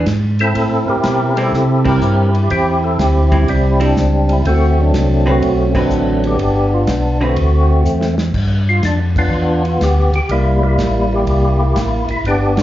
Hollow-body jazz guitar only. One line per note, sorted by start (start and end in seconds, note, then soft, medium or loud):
1.37 1.51 G3 medium
1.37 1.52 C4 medium
1.37 1.52 E4 medium
1.85 1.99 G3 medium
1.85 2.00 C4 medium
1.85 2.00 E4 medium
3.32 3.46 G3 medium
3.32 3.46 C4 medium
3.32 3.47 E4 medium
3.80 3.94 G3 medium
3.80 3.95 C4 medium
3.80 3.95 E4 medium
5.26 5.40 D3 medium
5.26 5.41 C4 medium
5.26 5.41 F#4 medium
5.26 5.41 B4 medium
5.75 6.36 D3 medium
5.75 6.37 C4 medium
5.75 6.37 F#4 medium
5.75 6.37 B4 medium
7.21 7.35 D3 medium
7.21 7.36 C4 medium
7.21 7.36 F#4 medium
7.21 7.36 B4 medium